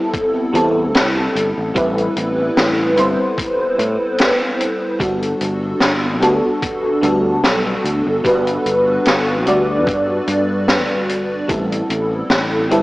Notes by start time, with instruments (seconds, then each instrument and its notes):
Already playing: fm electric piano G3 B3 C4 E4 A4
0.14 kick, closed hi-hat
0.53 fretless electric bass E2, fm electric piano G3 B3 C4 E4 A4, closed hi-hat
0.94 fretless electric bass C2, snare, closed hi-hat
1.35 fretless electric bass G1, closed hi-hat
1.58 fretless electric bass A1
1.74 fretless electric bass A1, fm electric piano G3 B3 C4 E4 B4, kick, closed hi-hat
1.98 closed hi-hat
2.16 fretless electric bass A1, closed hi-hat
2.57 fretless electric bass A1, snare, closed hi-hat
2.96 fretless electric bass G1, fm electric piano G3 C4 E4 B4 C5, closed hi-hat
3.38 kick, closed hi-hat
3.79 fretless electric bass A2, closed hi-hat
4.18 snare, closed hi-hat
4.60 closed hi-hat
4.99 fretless electric bass G1, fm electric piano G3 B3 D4 F#4 A4, kick, closed hi-hat
5.22 closed hi-hat
5.41 fretless electric bass G1, closed hi-hat
5.80 fretless electric bass G1, snare, closed hi-hat
6.21 fretless electric bass D2, fm electric piano G3 B3 D4 F#4 A4, closed hi-hat
6.62 kick, closed hi-hat
7.01 fretless electric bass D2, fm electric piano G3 B3 D4 F#4 A4, closed hi-hat
7.44 fretless electric bass B1, snare, closed hi-hat
7.84 fretless electric bass D2, closed hi-hat
8.07 fretless electric bass G1
8.24 fretless electric bass G1, fm electric piano G3 B3 D4 F#4 B4, kick, closed hi-hat
8.47 closed hi-hat
8.66 fretless electric bass G1, closed hi-hat
9.05 fretless electric bass G1, snare, closed hi-hat
9.45 fretless electric bass D2, fm electric piano G3 B3 D4 F#4 D5, closed hi-hat
9.87 fretless electric bass G2, kick, closed hi-hat
10.27 fretless electric bass G2, closed hi-hat
10.68 snare, closed hi-hat
10.90 fretless electric bass G1
11.09 closed hi-hat
11.48 fretless electric bass A1, fm electric piano G3 B3 C4 E4 A4, kick, closed hi-hat
11.72 closed hi-hat
11.90 fretless electric bass A1, closed hi-hat
12.30 fretless electric bass A1, snare, closed hi-hat
12.70 fretless electric bass G1, fm electric piano G3 B3 C4 E4 A4, closed hi-hat